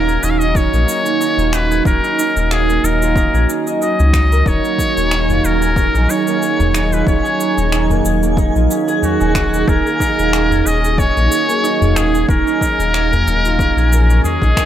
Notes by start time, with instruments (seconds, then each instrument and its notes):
Already playing: sub bass D#1, ambient pad D#3 F#3 D#4 F5 A#5, harp A#3 C#4 D#4 F4 C#5, muted trumpet A#4
0.08 harp G#4, cabasa
0.23 sub bass D#1, harp C#5, muted trumpet D#5, cabasa
0.30 muted trumpet F5
0.39 harp D#4, muted trumpet D#5, cabasa
0.55 harp D#4, muted trumpet C#5, kick, cabasa
0.73 sub bass A#1, harp A#3, cabasa
0.88 harp G#4, cabasa
1.05 harp A#3, cabasa
1.20 harp D#4, cabasa
1.37 sub bass D#1, harp F4, cabasa
1.53 harp C#4, muted trumpet B4, finger snap, cabasa
1.71 harp G#4, cabasa
1.85 sub bass D#1, muted trumpet A#4, harp C#5, kick, cabasa
2.03 harp D#4, cabasa
2.19 harp D#4, cabasa
2.36 sub bass D#1, harp A#3, cabasa
2.51 harp G#4, muted trumpet G#4, finger snap, cabasa
2.69 harp A#3, cabasa
2.83 sub bass D#1, harp D#4, muted trumpet A#4, cabasa
3.01 harp F4, cabasa
3.16 harp C#4, kick, cabasa
3.33 sub bass A#1, harp G#4, cabasa
3.50 harp D#4, cabasa
3.67 harp D#5, cabasa
3.82 harp F#4, muted trumpet D#5, cabasa
3.99 sub bass C#2, harp C#4, cabasa
4.13 finger snap, kick, cabasa
4.32 harp A#4, cabasa
4.46 sub bass D#1, harp D#4, synth texture G#4 G#5, muted trumpet C#5, kick, cabasa
4.64 harp A#3, cabasa
4.79 harp G#4, kick, cabasa
4.96 sub bass D#1, harp A#3, cabasa
5.05 ambient pad G#4
5.11 harp D#4, finger snap, cabasa
5.29 harp F4, udu, cabasa
5.44 sub bass D#1, harp C#4, muted trumpet A#4, cabasa
5.61 harp G#4, cabasa
5.76 harp C#5, kick, cabasa
5.94 sub bass A#1, harp D#4, cabasa
6.10 harp D#4, muted trumpet C#5, cabasa
6.27 harp A#3, cabasa
6.42 harp G#4, cabasa
6.59 sub bass D#1, harp A#3, udu, cabasa
6.74 harp D#4, finger snap, cabasa
6.92 harp F4, muted trumpet B4, cabasa
7.07 sub bass D#1, harp C#4, muted trumpet C#5, kick, cabasa
7.24 harp G#4, cabasa
7.40 harp C#5, cabasa
7.57 sub bass D#1, harp D#4, cabasa
7.72 harp D#4, finger snap, cabasa
7.90 harp A#3, udu, cabasa
8.05 sub bass D#1, harp G#4, cabasa
8.23 harp A#3, cabasa
8.37 harp D#4, kick, cabasa
8.55 sub bass A#1, harp F4, cabasa
8.70 harp C#4, cabasa
8.88 harp G#4, cabasa
9.02 muted trumpet F#4, harp C#5, udu, cabasa
9.20 sub bass D#1, harp D#4, cabasa
9.35 harp D#4, finger snap, kick, cabasa
9.53 harp A#3, cabasa
9.68 sub bass D#1, harp G#4, muted trumpet A#4, kick, cabasa
9.85 harp A#3, cabasa
10.00 harp D#4, kick, cabasa
10.17 sub bass D#1, harp F4, cabasa
10.33 harp C#4, finger snap, cabasa
10.50 harp G#4, udu, cabasa
10.65 sub bass D#1, harp C#5, muted trumpet D#5, cabasa
10.83 harp D#4, cabasa
10.98 harp D#4, muted trumpet C#5, kick, cabasa
11.16 sub bass A#1, harp A#3, cabasa
11.31 harp G#4, cabasa
11.48 harp A#3, cabasa
11.63 harp D#4, cabasa
11.81 sub bass D#1, harp F4, udu, cabasa
11.96 harp C#4, muted trumpet G#4, finger snap, cabasa
12.14 harp G#4, cabasa
12.29 sub bass D#1, muted trumpet A#4, harp C#5, kick, cabasa
12.47 harp D#4, cabasa
12.61 harp D#4, kick, cabasa
12.79 sub bass D#1, harp A#3, cabasa
12.94 harp G#4, finger snap, cabasa
13.12 harp A#3, udu, cabasa
13.27 sub bass D#1, harp D#4, cabasa
13.45 harp F4, cabasa
13.59 harp C#4, kick, cabasa
13.76 sub bass A#1, harp G#4, cabasa
13.92 harp A#4, cabasa
14.10 harp C#5, cabasa
14.24 muted trumpet G#4, harp C#5, udu, cabasa
14.42 sub bass A#1, harp D#4, kick, cabasa
14.57 harp A#4, finger snap, kick, cabasa